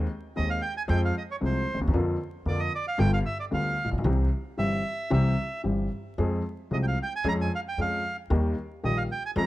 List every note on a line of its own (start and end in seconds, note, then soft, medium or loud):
0.36 0.58 D#2 medium
0.36 0.59 D#2 medium
0.36 0.58 D#3 medium
0.36 0.58 G#3 soft
0.36 0.58 C4 soft
0.36 0.58 G#4 medium
0.36 0.50 D#5 medium
0.50 0.62 F5 medium
0.62 0.74 G5 medium
0.77 0.83 G#5 loud
0.88 1.10 F2 medium
0.88 1.11 F2 loud
0.88 1.10 F3 medium
0.88 1.10 G#3 medium
0.88 1.10 C4 medium
0.88 1.10 G#4 medium
0.88 1.01 G5 loud
1.05 1.15 F5 medium
1.18 1.23 D#5 medium
1.31 1.36 C#5 medium
1.41 1.63 C2 medium
1.41 1.63 C3 medium
1.41 1.63 F3 soft
1.41 1.63 G#3 soft
1.41 1.63 C4 soft
1.41 1.63 G#4 soft
1.45 1.80 C5 medium
1.73 1.79 D2 medium
1.73 1.80 D2 medium
1.80 1.86 D#2 medium
1.80 1.87 D#2 medium
1.87 1.93 E2 medium
1.87 1.94 E2 medium
1.94 2.15 F2 medium
1.94 2.16 F2 medium
1.94 2.15 D3 medium
1.94 2.16 F3 medium
1.94 2.16 A#3 medium
1.94 2.16 F4 medium
2.46 2.68 F2 medium
2.46 2.68 D3 soft
2.46 2.68 F3 medium
2.46 2.68 A#3 soft
2.46 2.68 F4 medium
2.46 2.60 D5 medium
2.60 2.73 D#5 medium
2.75 2.86 D5 medium
2.88 2.99 F5 loud
2.98 3.21 G1 medium
2.98 3.21 G1 loud
2.98 3.20 G2 medium
2.98 3.20 D3 medium
2.98 3.21 G3 medium
2.98 3.21 B3 medium
2.98 3.21 F4 medium
2.98 3.11 G5 loud
3.14 3.19 F5 loud
3.26 3.38 E5 medium
3.40 3.45 D5 medium
3.51 3.74 D2 medium
3.51 3.73 D3 medium
3.51 3.73 G3 soft
3.51 3.74 B3 soft
3.51 3.74 F4 medium
3.51 3.90 F5 medium
3.85 3.91 A1 soft
3.85 3.91 A1 medium
3.91 3.98 A#1 medium
3.91 3.97 A#1 medium
3.98 4.04 B1 medium
3.98 4.05 B1 medium
4.04 4.27 C2 medium
4.04 4.27 C3 medium
4.04 4.27 E3 medium
4.04 4.27 G3 medium
4.04 4.27 C4 medium
4.04 4.27 G4 medium
4.58 4.80 G1 medium
4.58 4.80 G2 medium
4.58 4.80 E3 soft
4.58 4.80 G3 soft
4.58 4.80 C4 soft
4.58 4.81 G4 medium
4.58 5.11 E5 loud
5.10 5.33 C2 medium
5.10 5.33 C3 medium
5.10 5.33 E3 medium
5.10 5.33 G3 medium
5.10 5.33 C4 medium
5.10 5.33 G4 medium
5.10 5.62 E5 medium
5.64 5.87 G1 medium
5.64 5.87 G2 medium
5.64 5.87 E3 soft
5.64 5.87 G3 soft
5.64 5.87 C4 soft
5.64 5.87 G4 medium
6.18 6.41 F2 medium
6.18 6.41 F3 medium
6.18 6.41 G#3 medium
6.18 6.41 C4 medium
6.18 6.41 G#4 medium
6.71 6.94 C2 medium
6.71 6.94 C3 medium
6.71 6.94 F3 soft
6.71 6.94 G#3 soft
6.71 6.94 C4 soft
6.71 6.94 G#4 medium
6.71 6.77 D#5 medium
6.83 6.86 G5 medium
6.88 6.99 F5 medium
7.03 7.13 G5 medium
7.16 7.27 G#5 medium
7.24 7.47 F2 loud
7.24 7.47 F2 medium
7.24 7.47 F3 medium
7.24 7.47 G#3 medium
7.24 7.47 C#4 medium
7.24 7.47 G#4 medium
7.28 7.33 A#5 loud
7.41 7.52 G#5 medium
7.55 7.60 F5 medium
7.68 7.80 G5 medium
7.77 8.00 F2 medium
7.77 8.01 F2 medium
7.77 8.00 F3 medium
7.77 8.01 G#3 soft
7.77 8.01 C#4 soft
7.77 8.01 G#4 medium
7.77 8.17 F5 medium
8.30 8.53 D#2 medium
8.30 8.53 D#3 medium
8.30 8.53 G3 medium
8.30 8.53 A#3 medium
8.30 8.53 G4 medium
8.83 9.06 A#1 medium
8.83 9.06 A#2 medium
8.83 9.06 D#3 soft
8.83 9.06 G3 soft
8.83 9.06 A#3 soft
8.83 9.06 G4 medium
8.83 8.98 D#5 medium
8.98 9.03 F5 medium
9.12 9.23 G5 medium
9.26 9.31 G#5 medium
9.36 9.46 F2 loud
9.36 9.46 F2 medium
9.36 9.46 F3 medium
9.36 9.46 G#3 medium
9.36 9.46 C4 medium
9.36 9.46 G#4 medium
9.36 9.46 A#5 loud